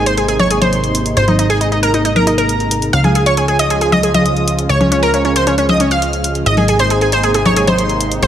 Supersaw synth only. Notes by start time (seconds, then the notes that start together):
Already playing: C3 G#3 A#3 D#4
2.93 C#3 F3 F4
6.46 C3 A#3 D#4